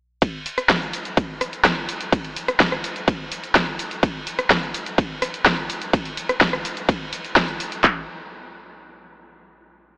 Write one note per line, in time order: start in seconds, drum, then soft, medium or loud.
0.22 kick loud
0.22 closed hi-hat medium
0.22 ride medium
0.22 shaker soft
0.46 open hi-hat loud
0.46 shaker medium
0.58 cross-stick medium
0.58 closed hi-hat medium
0.58 shaker soft
0.69 kick loud
0.69 snare loud
0.69 closed hi-hat medium
0.69 ride medium
0.69 shaker soft
0.82 shaker soft
0.93 open hi-hat loud
0.93 shaker medium
1.05 closed hi-hat medium
1.05 shaker soft
1.17 kick loud
1.17 closed hi-hat medium
1.17 ride medium
1.17 shaker soft
1.41 cross-stick medium
1.41 open hi-hat loud
1.41 shaker medium
1.53 closed hi-hat medium
1.53 shaker soft
1.65 kick loud
1.65 snare loud
1.65 closed hi-hat medium
1.65 ride medium
1.65 shaker soft
1.89 open hi-hat loud
1.89 shaker medium
2.01 closed hi-hat medium
2.01 shaker soft
2.12 kick loud
2.12 closed hi-hat medium
2.12 ride medium
2.12 shaker soft
2.24 open hi-hat medium
2.36 open hi-hat loud
2.36 shaker medium
2.48 cross-stick medium
2.48 closed hi-hat medium
2.48 shaker soft
2.60 kick loud
2.60 snare loud
2.60 closed hi-hat medium
2.60 ride medium
2.60 shaker soft
2.72 cross-stick medium
2.72 shaker soft
2.84 open hi-hat loud
2.84 shaker medium
2.96 closed hi-hat medium
2.96 shaker soft
3.08 kick loud
3.08 closed hi-hat medium
3.08 ride medium
3.08 shaker soft
3.32 open hi-hat loud
3.32 shaker medium
3.44 closed hi-hat medium
3.44 shaker soft
3.55 kick loud
3.55 snare loud
3.55 closed hi-hat medium
3.55 ride medium
3.55 shaker soft
3.79 open hi-hat loud
3.79 shaker medium
3.91 closed hi-hat medium
3.91 shaker soft
4.03 kick loud
4.03 closed hi-hat medium
4.03 ride medium
4.03 shaker soft
4.27 open hi-hat loud
4.27 shaker medium
4.39 cross-stick medium
4.39 closed hi-hat medium
4.39 shaker soft
4.50 kick loud
4.50 snare loud
4.50 closed hi-hat medium
4.50 ride medium
4.50 shaker soft
4.63 shaker soft
4.74 open hi-hat loud
4.74 shaker medium
4.86 closed hi-hat medium
4.86 shaker soft
4.98 kick loud
4.98 closed hi-hat medium
4.98 ride medium
4.98 shaker soft
5.22 cross-stick medium
5.22 open hi-hat loud
5.22 shaker medium
5.34 closed hi-hat medium
5.34 shaker soft
5.46 kick loud
5.46 snare loud
5.46 closed hi-hat medium
5.46 ride medium
5.46 shaker soft
5.70 open hi-hat loud
5.70 shaker medium
5.82 closed hi-hat medium
5.82 shaker soft
5.93 kick loud
5.93 closed hi-hat medium
5.93 ride medium
5.93 shaker soft
6.05 open hi-hat medium
6.17 open hi-hat loud
6.17 shaker medium
6.29 cross-stick medium
6.29 closed hi-hat soft
6.29 shaker soft
6.41 kick loud
6.41 snare loud
6.41 closed hi-hat medium
6.41 ride medium
6.41 shaker soft
6.53 cross-stick medium
6.53 shaker soft
6.65 open hi-hat loud
6.65 shaker medium
6.77 closed hi-hat medium
6.77 shaker soft
6.89 kick loud
6.89 closed hi-hat medium
6.89 ride medium
6.89 shaker soft
7.13 open hi-hat loud
7.13 shaker medium
7.25 closed hi-hat soft
7.25 shaker soft
7.36 kick loud
7.36 snare loud
7.36 closed hi-hat medium
7.36 ride medium
7.36 shaker soft
7.48 closed hi-hat soft
7.60 open hi-hat loud
7.60 shaker medium
7.72 closed hi-hat medium
7.72 shaker soft
7.84 kick loud
7.84 clap medium